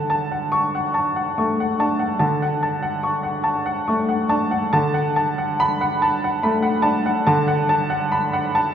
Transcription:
Already playing: D3 F#5 A5
0.10 A5
0.31 F#5
0.52 C#6
0.75 F#5
0.94 A5
1.16 F#5
1.38 A3 C#6
1.60 F#5
1.80 D4 A5
1.99 F#5
2.19 D3 A5
2.42 F#5
2.63 A5
2.82 F#5
3.03 C#6
3.23 F#5
3.44 A5
3.66 F#5
3.88 A3 C#6
4.09 F#5
4.29 D4 A5
4.51 F#5
4.73 D3 A5
4.94 F#5
5.16 A5
5.38 F#5
5.60 B5
5.81 F#5
6.02 A5
6.24 F#5
6.43 A3 B5
6.62 F#5
6.82 D4 A5
7.06 F#5
7.27 D3 A5
7.48 F#5
7.69 A5
7.90 F#5
8.12 B5
8.33 F#5
8.55 A5

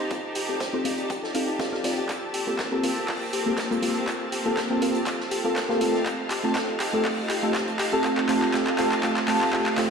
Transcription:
Already playing: C4 D#4 F4 G4 A4 C5 D5 F5 G5 A5
0.11 F4, kick, closed hi-hat
0.35 G4, closed hi-hat, open hi-hat
0.48 C4 D#4 F4 G4 A4
0.60 C5, kick, snare, closed hi-hat
0.73 C4 D#4 F4 G4 A4 C5
0.85 C4 D#4 F4 G4 A4, closed hi-hat, open hi-hat
0.98 closed hi-hat
1.10 G4, kick, closed hi-hat
1.23 A4, snare
1.34 C4 D#4 F4 G4 A4 F5, closed hi-hat, open hi-hat
1.48 F4
1.59 C4 D#4 F4 G4 A4 F5, kick, snare, closed hi-hat
1.72 C4 D#4 F4 G4 A4 F5, snare
1.84 C4 D#4 F4 G4 D5, snare, closed hi-hat, open hi-hat
1.98 G4
2.09 C4 F4 A#4, kick, clap, closed hi-hat
2.23 A#3
2.34 G4, closed hi-hat, open hi-hat
2.47 A#3 C4 F4 G4 A4
2.58 A#4, kick, snare, clap, closed hi-hat
2.71 A#3 C4 F4 G4 A4 A#4
2.83 A#3 C4 F4 G4 A#4, closed hi-hat, open hi-hat
2.93 F5
3.08 F4, kick, clap, open hi-hat
3.33 G4, closed hi-hat, open hi-hat
3.46 A#3 C4 F4 G4 A4
3.57 A#4, kick, snare, clap, closed hi-hat
3.71 A#3 C4 F4 G4 A4 A#4, closed hi-hat
3.82 A#3 C4 F4 G4 A#4, closed hi-hat, open hi-hat
4.07 F4, kick, clap, closed hi-hat
4.32 G4, closed hi-hat, open hi-hat
4.45 A#3 C4 F4 G4 A4
4.57 A#4, kick, snare, clap, closed hi-hat
4.70 A#3 C4 F4 G4 A4 A#4
4.81 A#3 C4 F4 G4 A#4, closed hi-hat, open hi-hat
4.95 closed hi-hat
5.06 F4, kick, clap, closed hi-hat
5.20 snare
5.31 G4, closed hi-hat, open hi-hat
5.44 A#3 C4 F4 G4 A4
5.56 A#4, kick, snare, clap, closed hi-hat
5.69 A#3 C4 F4 G4 A4 A#4, snare
5.80 A3 C4 D#4 F4 G4 A4 D#5 G5, closed hi-hat, open hi-hat
5.94 snare
6.06 F4, kick, clap, closed hi-hat
6.30 G4, clap, closed hi-hat, open hi-hat
6.43 A3 C4 F4 G4 A4
6.55 F4, kick, snare, clap, closed hi-hat
6.80 G4, clap, closed hi-hat, open hi-hat
6.93 A3 C4 F4 G4 A4
7.05 F4, kick, clap, open hi-hat
7.30 G4, clap, closed hi-hat, open hi-hat
7.43 A3 C4 F4 G4 A4
7.54 F4, kick, snare, clap, closed hi-hat
7.68 closed hi-hat
7.79 G4 F5, clap, closed hi-hat, open hi-hat
7.92 A3 C4 F4 G4 A4
8.04 A3 C4 F4 G4 A4, kick, clap, closed hi-hat
8.18 clap
8.28 A3 C4 F4 G4 A4, clap, closed hi-hat, open hi-hat
8.42 clap
8.53 A3 C4 F4 G4 A4, kick, snare, clap, closed hi-hat
8.67 clap
8.78 A3 C4 F4 G4 A4, clap, closed hi-hat, open hi-hat
8.91 clap, closed hi-hat
9.03 A3 C4 F4 G4 A4, kick, clap, closed hi-hat
9.17 snare, clap
9.28 A3 C4 F4 G4 A4, clap, open hi-hat
9.41 clap
9.53 A3 C4 F4 G4 A4, kick, clap
9.66 clap
9.77 A3 C4 F4 G4 A4, snare, clap, closed hi-hat, open hi-hat

